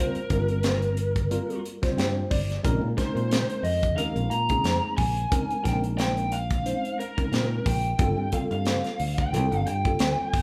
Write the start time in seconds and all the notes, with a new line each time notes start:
Already playing: G3 A#3 C4 A#4
0.00 F4 C5
0.15 muted fingered electric bass stroke, closed hi-hat
0.30 G1 G3 A#3 C4 F4 A#4, kick, closed hi-hat
0.48 closed hi-hat
0.63 snare, closed hi-hat
0.82 closed hi-hat
0.97 closed hi-hat
1.16 kick, closed hi-hat
1.30 G3 A#3 C4 F4 A#4, closed hi-hat
1.50 closed hi-hat
1.65 closed hi-hat
1.82 G3 A#3 C4 F4 C5, kick, snare, closed hi-hat
1.97 G2 G5, snare, closed hi-hat
2.31 G1 D5, kick, open hi-hat
2.50 snare, closed hi-hat
2.63 A#1 G#3 C4 C#4 D#4 A#4, kick, closed hi-hat
2.81 A#2
2.97 G#3 C4 C#4 D#4 A#4 C5, kick, snare, closed hi-hat
3.15 A#2, closed hi-hat
3.31 snare, closed hi-hat
3.50 closed hi-hat
3.63 F2 D#5, open hi-hat
3.83 kick, closed hi-hat
3.96 D#2 G#3 C4 C#4 D#4 A#4 F5, closed hi-hat
4.16 A#1, closed hi-hat
4.30 A#2 A#5, closed hi-hat
4.49 G#3 C4 C#4 D#4 G#4, kick, closed hi-hat
4.64 F2, snare, closed hi-hat
4.83 muted fingered electric bass stroke
4.97 A#1 G#5, kick, open hi-hat
5.17 closed hi-hat
5.31 G#3 C4 C#4 D#4 A#4, kick, closed hi-hat
5.49 muted fingered electric bass stroke, closed hi-hat
5.63 A#1 G#3 C4 C#4 D#4 A#4 G5, kick, snare, closed hi-hat
5.84 closed hi-hat
5.98 G5, snare, closed hi-hat
6.17 closed hi-hat
6.32 F5, closed hi-hat
6.50 kick, closed hi-hat
6.66 G#3 C4 C#4 D#4 C5, closed hi-hat
6.85 closed hi-hat
6.99 A#4, closed hi-hat
7.17 G#3 C4 C#4 D#4 A#4, kick, closed hi-hat
7.32 A#2, snare, closed hi-hat
7.66 A#1 G5, kick, open hi-hat
7.84 closed hi-hat
7.98 G1 G3 A#3 C4 F4 A4, kick, closed hi-hat
8.17 G2
8.32 G3 A#3 C4 F4 A4 F5, kick, closed hi-hat
8.51 G2 F5, closed hi-hat
8.65 snare, closed hi-hat
8.84 snare, closed hi-hat
9.00 D2, open hi-hat
9.18 G5, kick, closed hi-hat
9.33 C2 G3 A#3 C4 F4 A4, closed hi-hat
9.52 G1, closed hi-hat
9.66 G2 G5, closed hi-hat
9.85 G3 A#3 C4 F4 A4, kick, closed hi-hat
9.99 D2, snare, closed hi-hat
10.19 muted fingered electric bass stroke
10.33 G1, kick, open hi-hat